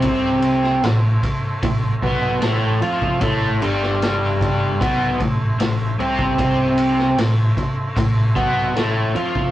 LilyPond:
<<
  \new Staff \with { instrumentName = "Transistor combo organ" } { \time 4/4 \key a \minor \tempo 4 = 76 <a e'' c'''>1~ | <a e'' c'''>1~ | <a e'' c'''>1 | }
  \new Staff \with { instrumentName = "Overdriven electric guitar" } { \clef bass \time 4/4 \key a \minor <c c'>4 a,8 r8 a,8 <b, b>8 <a, a>8 <f f'>8 | <a, a>8 <g, g>4. <b, b>8 a,8 a,8 <c c'>8~ | <c c'>4 a,8 r8 a,8 <b, b>8 <a, a>8 <f f'>8 | }
  \new Staff \with { instrumentName = "Picked electric bass" } { \clef bass \time 4/4 \key a \minor c,4 a,,8 r8 a,,8 b,,8 a,,8 f,8 | a,,8 g,,4. b,,8 a,,8 a,,8 c,8~ | c,4 a,,8 r8 a,,8 b,,8 a,,8 f,8 | }
  \new DrumStaff \with { instrumentName = "Drums" } \drummode { \time 4/4 <bd cymr>8 cymr16 sn16 <cymr sn>8 <bd cymr>8 <bd cymr>8 <bd cymr>8 <cymr sn>8 cymr16 bd16 | <bd cymr>8 cymr16 sn16 <cymr sn>8 <bd cymr>8 <bd cymr>8 <bd cymr>8 <cymr sn>8 cymr16 bd16 | <bd cymr>8 cymr16 sn16 <cymr sn>8 <bd cymr>8 <bd cymr>8 <bd cymr>8 <cymr sn>8 cymr16 bd16 | }
>>